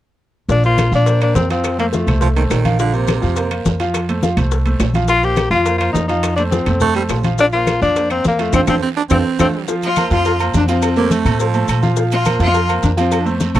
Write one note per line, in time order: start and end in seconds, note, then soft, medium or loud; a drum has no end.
0.49 0.89 A#1 loud
0.49 0.61 F3 medium
0.49 0.64 D4 loud
0.49 0.62 F4 medium
0.49 0.62 F5 medium
0.49 high bongo medium
0.49 high conga soft
0.49 long guiro medium
0.49 maracas medium
0.63 0.88 A#3 medium
0.63 0.92 F4 loud
0.63 0.88 A#4 medium
0.63 0.88 C5 medium
0.63 high conga soft
0.63 maracas soft
0.78 high bongo medium
0.78 high conga medium
0.78 high timbale medium
0.78 short guiro medium
0.78 claves medium
0.78 maracas medium
0.92 1.32 A#2 loud
0.92 1.05 F3 medium
0.92 1.21 D4 loud
0.92 1.05 F4 medium
0.92 1.05 F5 medium
0.92 high conga soft
0.92 short guiro medium
0.92 maracas soft
1.06 1.18 A#3 medium
1.06 1.19 A#4 medium
1.06 1.19 C5 medium
1.06 high bongo medium
1.06 high conga soft
1.06 high timbale medium
1.06 long guiro medium
1.06 maracas medium
1.21 1.45 A#3 medium
1.21 1.36 D4 medium
1.21 1.45 A#4 medium
1.21 1.45 C5 medium
1.21 high conga soft
1.21 high timbale medium
1.21 claves medium
1.21 maracas soft
1.35 2.02 F2 medium
1.35 1.49 C4 medium
1.35 high bongo medium
1.35 low bongo medium
1.35 high conga medium
1.35 low timbale medium
1.35 short guiro medium
1.35 maracas medium
1.50 1.74 F3 medium
1.50 1.77 C4 medium
1.50 1.74 F4 medium
1.50 1.74 F5 medium
1.50 high conga soft
1.50 high timbale medium
1.50 short guiro medium
1.50 maracas soft
1.64 high bongo medium
1.64 high conga soft
1.64 high timbale medium
1.64 long guiro medium
1.64 claves medium
1.64 maracas medium
1.78 1.90 A3 medium
1.78 1.86 A#3 medium
1.78 1.90 A4 medium
1.78 1.91 C5 medium
1.78 high bongo soft
1.78 high conga soft
1.78 high timbale medium
1.78 maracas soft
1.93 2.05 F3 medium
1.93 2.47 A3 medium
1.93 2.05 F4 medium
1.93 2.05 F5 medium
1.93 high bongo medium
1.93 high conga medium
1.93 short guiro medium
1.93 maracas medium
2.07 2.47 C2 medium
2.07 2.31 A3 medium
2.07 2.31 A4 medium
2.07 2.31 C5 medium
2.07 high bongo soft
2.07 high conga soft
2.07 low conga medium
2.07 high timbale medium
2.07 short guiro medium
2.07 claves medium
2.07 maracas soft
2.21 2.28 F3 loud
2.21 high bongo medium
2.21 high conga soft
2.21 low conga medium
2.21 long guiro medium
2.21 maracas medium
2.36 2.43 D#3 medium
2.36 2.60 A3 medium
2.36 2.60 A4 medium
2.36 2.60 C5 medium
2.36 high bongo soft
2.36 high conga soft
2.36 high timbale medium
2.36 maracas soft
2.50 3.17 A#1 medium
2.50 2.77 D#3 medium
2.50 high bongo medium
2.50 low bongo medium
2.50 high conga soft
2.50 high timbale medium
2.50 low timbale medium
2.50 short guiro medium
2.50 claves medium
2.50 maracas medium
2.65 2.77 F3 medium
2.65 2.77 F4 medium
2.65 2.77 F5 medium
2.65 high conga medium
2.65 high timbale medium
2.65 short guiro medium
2.65 maracas soft
2.79 2.96 D3 medium
2.79 2.91 F3 medium
2.79 2.91 F4 medium
2.79 2.91 F5 medium
2.79 high bongo medium
2.79 high conga soft
2.79 maracas medium
2.93 3.51 C3 medium
2.93 3.17 A#3 medium
2.93 3.18 A#4 medium
2.93 3.18 C5 medium
2.93 high conga soft
2.93 maracas soft
3.07 high bongo medium
3.07 high conga loud
3.07 high timbale medium
3.07 short guiro medium
3.07 claves medium
3.07 maracas medium
3.22 3.63 F2 medium
3.22 3.34 F3 medium
3.22 3.34 F4 medium
3.22 3.34 F5 medium
3.22 high conga soft
3.22 short guiro medium
3.22 maracas soft
3.36 3.49 A#3 medium
3.36 3.49 A#4 medium
3.36 3.49 C5 medium
3.36 high bongo medium
3.36 high conga soft
3.36 high timbale medium
3.36 long guiro medium
3.36 maracas medium
3.51 3.75 A#3 medium
3.51 3.75 A#4 medium
3.51 3.75 C5 medium
3.51 high conga soft
3.51 high timbale medium
3.51 claves medium
3.51 maracas soft
3.65 4.32 F2 medium
3.65 high bongo medium
3.65 low bongo medium
3.65 high conga medium
3.65 short guiro medium
3.65 maracas medium
3.80 4.03 F3 medium
3.80 4.04 F4 medium
3.80 4.04 F5 medium
3.80 high timbale medium
3.80 short guiro medium
3.80 maracas soft
3.94 high bongo medium
3.94 high conga soft
3.94 high timbale loud
3.94 long guiro medium
3.94 claves medium
3.94 maracas medium
4.09 4.20 A3 medium
4.09 4.21 A4 medium
4.09 4.21 C5 medium
4.09 high bongo soft
4.09 high conga soft
4.09 high timbale medium
4.09 maracas soft
4.23 4.35 F3 medium
4.23 4.35 F4 medium
4.23 4.35 F5 medium
4.23 high bongo medium
4.23 high conga medium
4.23 short guiro medium
4.23 maracas medium
4.37 4.77 C2 medium
4.37 4.61 A3 medium
4.37 4.61 A4 medium
4.37 4.61 C5 medium
4.37 high bongo soft
4.37 high conga soft
4.37 low conga medium
4.37 high timbale medium
4.37 short guiro medium
4.37 claves medium
4.37 maracas soft
4.51 high bongo medium
4.51 high conga soft
4.51 long guiro medium
4.51 maracas medium
4.66 4.90 A3 medium
4.66 4.90 A4 medium
4.66 4.90 C5 medium
4.66 high bongo soft
4.66 high conga soft
4.66 high timbale medium
4.66 maracas soft
4.80 5.46 A#1 medium
4.80 high bongo medium
4.80 low bongo medium
4.80 high conga soft
4.80 high timbale medium
4.80 low timbale medium
4.80 short guiro medium
4.80 claves medium
4.80 maracas medium
4.94 5.07 F3 medium
4.94 5.07 F4 medium
4.94 5.07 F5 medium
4.94 high conga medium
4.94 high timbale medium
4.94 short guiro medium
4.94 maracas soft
5.08 5.21 F3 medium
5.08 5.21 F4 medium
5.08 5.26 F4 loud
5.08 5.21 F5 medium
5.08 high bongo medium
5.08 high conga soft
5.08 long guiro medium
5.08 maracas medium
5.23 5.47 A#3 medium
5.23 5.50 G4 loud
5.23 5.47 A#4 medium
5.23 5.47 C5 medium
5.23 high conga soft
5.23 maracas soft
5.36 high bongo medium
5.36 high conga loud
5.36 high timbale medium
5.36 short guiro medium
5.36 claves medium
5.36 maracas medium
5.50 5.91 F2 loud
5.50 5.64 F3 medium
5.50 5.77 F4 loud
5.50 5.64 F4 medium
5.50 5.64 F5 medium
5.50 high conga soft
5.50 short guiro medium
5.50 maracas soft
5.65 5.78 A#3 medium
5.65 5.78 A#4 medium
5.65 5.79 C5 medium
5.65 high bongo medium
5.65 high conga soft
5.65 high timbale medium
5.65 long guiro medium
5.65 maracas medium
5.78 6.04 A#3 medium
5.78 5.92 F4 loud
5.78 6.04 A#4 medium
5.78 6.04 C5 medium
5.78 high conga soft
5.78 high timbale medium
5.78 claves medium
5.78 maracas soft
5.93 6.61 F2 medium
5.93 6.07 D#4 medium
5.93 high bongo medium
5.93 low bongo medium
5.93 high conga medium
5.93 low timbale medium
5.93 short guiro medium
5.93 maracas medium
6.08 6.33 F3 medium
6.08 6.35 D#4 medium
6.08 6.33 F4 medium
6.08 6.33 F5 medium
6.08 high conga soft
6.08 high timbale medium
6.08 short guiro medium
6.08 maracas soft
6.23 high bongo medium
6.23 high conga soft
6.23 high timbale loud
6.23 long guiro medium
6.23 claves medium
6.23 maracas medium
6.36 6.50 A3 medium
6.36 6.43 D4 medium
6.36 6.51 A4 medium
6.36 6.51 C5 medium
6.36 high bongo soft
6.36 high conga soft
6.36 high timbale medium
6.36 maracas soft
6.51 6.65 F3 medium
6.51 7.05 C4 medium
6.51 6.65 F4 medium
6.51 6.65 F5 medium
6.51 high bongo medium
6.51 high conga medium
6.51 short guiro medium
6.51 maracas medium
6.66 7.07 F2 medium
6.66 6.91 A3 medium
6.66 6.91 A4 medium
6.66 6.91 C5 medium
6.66 high bongo soft
6.66 high conga soft
6.66 low conga medium
6.66 high timbale medium
6.66 short guiro medium
6.66 claves medium
6.66 maracas soft
6.80 6.95 A3 loud
6.80 high bongo medium
6.80 high conga soft
6.80 low conga medium
6.80 long guiro medium
6.80 maracas medium
6.95 7.02 G3 medium
6.95 7.19 A3 medium
6.95 7.19 A4 medium
6.95 7.20 C5 medium
6.95 high bongo soft
6.95 high conga soft
6.95 high timbale medium
6.95 maracas soft
7.09 7.76 A#1 medium
7.09 7.30 F3 medium
7.09 high bongo medium
7.09 low bongo medium
7.09 high conga soft
7.09 high timbale medium
7.09 low timbale medium
7.09 short guiro medium
7.09 claves medium
7.09 maracas medium
7.23 7.36 F3 medium
7.23 7.36 F4 medium
7.23 7.37 F5 medium
7.23 high conga medium
7.23 high timbale medium
7.23 short guiro medium
7.23 maracas soft
7.38 7.51 F3 medium
7.38 7.46 D4 loud
7.38 7.50 F4 medium
7.38 7.51 F5 medium
7.38 high bongo medium
7.38 high conga soft
7.38 long guiro medium
7.38 maracas medium
7.52 7.77 A#3 medium
7.52 7.80 F4 loud
7.52 7.77 A#4 medium
7.52 7.77 C5 medium
7.52 high conga soft
7.52 maracas soft
7.67 high bongo medium
7.67 high conga medium
7.67 high timbale medium
7.67 short guiro medium
7.67 claves medium
7.67 maracas medium
7.81 8.22 F2 medium
7.81 7.93 F3 medium
7.81 8.09 D4 loud
7.81 7.94 F4 medium
7.81 7.94 F5 medium
7.81 high conga soft
7.81 short guiro medium
7.81 maracas soft
7.96 8.08 A#3 medium
7.96 8.08 A#4 medium
7.96 8.08 C5 medium
7.96 high bongo medium
7.96 high conga soft
7.96 high timbale medium
7.96 long guiro medium
7.96 maracas medium
8.10 8.34 A#3 medium
8.10 8.24 C4 loud
8.10 8.34 A#4 medium
8.10 8.34 C5 medium
8.10 high conga soft
8.10 high timbale medium
8.10 claves medium
8.10 maracas soft
8.24 8.51 F2 medium
8.24 8.43 A#3 medium
8.24 high bongo medium
8.24 low bongo medium
8.24 high conga medium
8.24 short guiro medium
8.24 maracas medium
8.39 8.51 F3 medium
8.39 8.54 A3 medium
8.39 8.51 F4 medium
8.39 8.51 F5 medium
8.39 high conga soft
8.39 high timbale medium
8.39 short guiro medium
8.39 maracas soft
8.53 8.64 F2 loud
8.53 8.62 C4 loud
8.53 8.63 F4 medium
8.53 8.63 A4 medium
8.53 8.63 C5 loud
8.53 low bongo medium
8.53 high conga medium
8.53 high timbale loud
8.53 long guiro medium
8.53 claves loud
8.53 maracas loud
8.67 8.78 F2 loud
8.67 8.82 F3 medium
8.67 8.76 C4 medium
8.67 8.77 F4 loud
8.67 8.77 A4 medium
8.67 8.77 C5 medium
8.67 low bongo loud
8.67 high conga medium
8.67 high timbale loud
8.67 long guiro loud
8.67 claves medium
8.67 maracas loud
8.82 8.89 C4 medium
8.97 9.03 D4 loud
9.10 9.21 F2 medium
9.10 9.37 C4 loud
9.10 9.18 C4 medium
9.10 9.20 F4 medium
9.10 9.20 A4 loud
9.10 9.20 C5 loud
9.10 low bongo loud
9.10 high conga loud
9.10 high timbale loud
9.10 long guiro loud
9.10 claves medium
9.10 maracas medium
9.39 9.50 F2 medium
9.39 9.67 A3 medium
9.39 9.47 C4 medium
9.39 9.48 F4 loud
9.39 9.48 A4 loud
9.39 9.49 C5 loud
9.39 low bongo medium
9.39 high conga loud
9.39 high timbale loud
9.39 long guiro loud
9.39 claves loud
9.39 maracas loud
9.68 9.92 F3 medium
9.68 9.92 F4 medium
9.68 9.92 F5 medium
9.68 cowbell loud
9.68 high conga soft
9.68 long guiro medium
9.68 maracas medium
9.82 10.11 F4 loud
9.82 high conga soft
9.82 low agogo medium
9.82 maracas soft
9.96 10.09 A#3 medium
9.96 10.09 A#4 medium
9.96 10.09 C5 medium
9.96 cowbell medium
9.96 high conga medium
9.96 low agogo loud
9.96 short guiro medium
9.96 claves medium
9.96 maracas medium
10.10 10.51 F2 loud
10.10 10.35 F3 medium
10.10 10.35 F4 medium
10.10 10.39 F4 loud
10.10 10.35 F5 medium
10.10 cowbell medium
10.10 high conga soft
10.10 short guiro medium
10.10 maracas soft
10.25 cowbell loud
10.25 high conga soft
10.25 low agogo medium
10.25 long guiro medium
10.25 maracas medium
10.39 10.63 A#3 medium
10.39 10.64 A#4 medium
10.39 10.64 C5 medium
10.39 high conga soft
10.39 low agogo loud
10.39 claves medium
10.39 maracas soft
10.54 11.20 F2 medium
10.54 10.68 D4 loud
10.54 cowbell medium
10.54 high conga medium
10.54 low timbale medium
10.54 short guiro medium
10.54 maracas medium
10.68 10.92 F3 medium
10.68 11.22 C4 medium
10.68 10.92 F4 medium
10.68 10.93 F5 medium
10.68 cowbell medium
10.68 high conga soft
10.68 low agogo medium
10.68 short guiro medium
10.68 maracas soft
10.82 cowbell loud
10.82 high conga soft
10.82 low agogo loud
10.82 long guiro medium
10.82 claves medium
10.82 maracas medium
10.96 11.20 A3 medium
10.96 11.14 A#3 loud
10.96 11.20 A4 medium
10.96 11.21 C5 medium
10.96 high conga soft
10.96 maracas soft
11.11 11.40 A3 loud
11.11 cowbell medium
11.11 high conga medium
11.11 low agogo medium
11.11 short guiro medium
11.11 maracas medium
11.25 11.65 A2 medium
11.25 11.49 A3 medium
11.25 11.49 A4 medium
11.25 11.50 C5 medium
11.25 cowbell medium
11.25 high conga soft
11.25 low conga medium
11.25 low agogo loud
11.25 short guiro medium
11.25 claves medium
11.25 maracas soft
11.39 11.67 F3 loud
11.39 cowbell loud
11.39 high conga soft
11.39 long guiro medium
11.39 maracas medium
11.54 11.78 A3 medium
11.54 11.78 A4 medium
11.54 11.78 C5 medium
11.54 high conga soft
11.54 low agogo medium
11.54 maracas soft
11.68 12.35 A#2 medium
11.68 12.03 F3 medium
11.68 cowbell medium
11.68 high conga soft
11.68 low agogo loud
11.68 short guiro medium
11.68 claves medium
11.68 maracas medium
11.82 11.95 F3 medium
11.82 11.95 F4 medium
11.82 11.95 F5 medium
11.82 cowbell medium
11.82 high conga medium
11.82 short guiro medium
11.82 maracas soft
11.96 12.21 F3 medium
11.96 12.21 F4 medium
11.96 12.21 F5 medium
11.96 cowbell loud
11.96 high conga soft
11.96 long guiro medium
11.96 maracas medium
12.11 12.39 F4 loud
12.11 high conga soft
12.11 low agogo medium
12.11 maracas soft
12.25 12.38 A#3 medium
12.25 12.38 A#4 medium
12.25 12.38 C5 medium
12.25 cowbell medium
12.25 high conga loud
12.25 low agogo loud
12.25 short guiro medium
12.25 claves medium
12.25 maracas medium
12.39 12.80 F2 loud
12.39 12.64 F3 medium
12.39 12.64 F4 loud
12.39 12.68 F4 loud
12.39 12.64 F5 medium
12.39 cowbell medium
12.39 high conga soft
12.39 short guiro medium
12.39 maracas soft
12.54 cowbell loud
12.54 high conga soft
12.54 low agogo medium
12.54 long guiro medium
12.54 maracas medium
12.69 12.93 A#3 medium
12.69 12.93 A#4 medium
12.69 12.93 C5 medium
12.69 high conga soft
12.69 low agogo medium
12.69 claves medium
12.69 maracas soft
12.83 13.49 F2 medium
12.83 12.90 D4 medium
12.83 cowbell medium
12.83 high conga medium
12.83 short guiro medium
12.83 maracas medium
12.97 13.21 F3 loud
12.97 13.21 C4 medium
12.97 13.21 F4 medium
12.97 13.21 F5 medium
12.97 cowbell medium
12.97 high conga soft
12.97 low agogo medium
12.97 short guiro medium
12.97 maracas soft
13.12 cowbell loud
13.12 high conga soft
13.12 low agogo loud
13.12 long guiro medium
13.12 claves medium
13.12 maracas medium
13.20 13.30 D4 medium
13.25 13.49 A3 medium
13.25 13.39 C4 medium
13.25 13.49 A4 medium
13.25 13.50 C5 medium
13.25 high conga soft
13.25 maracas soft
13.38 13.47 A#3 medium
13.38 cowbell medium
13.38 high conga medium
13.38 low agogo medium
13.38 short guiro medium
13.38 maracas medium
13.46 13.55 C4 medium
13.54 13.60 C2 medium
13.54 13.60 A3 medium
13.54 13.60 A3 loud
13.54 13.60 A4 medium
13.54 13.60 C5 medium
13.54 cowbell medium
13.54 high conga soft
13.54 low conga medium
13.54 low agogo loud
13.54 short guiro medium
13.54 claves medium
13.54 maracas soft